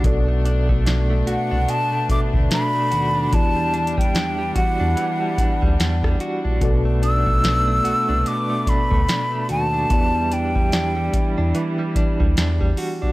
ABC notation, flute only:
X:1
M:4/4
L:1/16
Q:"Swing 16ths" 1/4=73
K:Em
V:1 name="Flute"
z6 f2 a2 d'2 b4 | a3 g3 f8 z2 | z2 e'6 d'2 b4 a2- | a2 g6 z8 |]